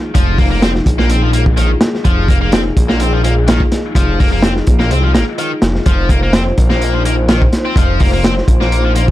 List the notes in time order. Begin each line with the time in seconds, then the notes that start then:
Already playing: D#4 F4 G#4
0.15 F1 F3, kick, closed hi-hat
0.38 A#3, kick, open hi-hat
0.51 A#3
0.62 C4, snare, closed hi-hat
0.75 snare
0.86 A#1, kick, closed hi-hat
0.99 A#3, snare
1.10 C4, closed hi-hat
1.23 F3
1.33 A#3, closed hi-hat
1.46 kick
1.57 D#3, closed hi-hat
1.81 snare, closed hi-hat
1.95 snare
2.05 F1 F3, kick, closed hi-hat
2.28 A#3, kick, closed hi-hat
2.42 A#3
2.52 C4, snare, closed hi-hat
2.77 A#1, kick, closed hi-hat
2.89 A#3, snare
3.00 C4, closed hi-hat
3.13 F3
3.24 A#3, closed hi-hat
3.48 D#3, snare, closed hi-hat
3.60 kick
3.72 snare, closed hi-hat
3.95 F1 F3, kick, closed hi-hat
4.19 A#3, kick, open hi-hat
4.32 A#3
4.42 C4, snare, closed hi-hat
4.56 snare
4.67 A#1, kick, closed hi-hat
4.80 A#3, snare
4.91 C2 C4, closed hi-hat
5.03 F3
5.15 G#1 A#3, snare, closed hi-hat
5.38 D#3, closed hi-hat
5.62 F1, snare, closed hi-hat
5.75 snare
5.86 F1 F3 C5, kick, closed hi-hat
6.09 A#3, kick, closed hi-hat
6.23 A#3
6.33 C4, snare, closed hi-hat
6.58 A#1, kick, closed hi-hat
6.70 A#3, snare
6.82 closed hi-hat
6.94 F3
7.05 A#3, closed hi-hat
7.29 D#3, snare, closed hi-hat
7.42 kick
7.53 snare, closed hi-hat
7.65 C4
7.76 F1 F3, kick, closed hi-hat
8.00 A#3, kick, open hi-hat
8.13 A#3
8.24 C4, snare, closed hi-hat
8.38 snare
8.48 A#1, kick, closed hi-hat
8.61 A#3, snare
8.72 closed hi-hat
8.85 F3
8.96 A#3, closed hi-hat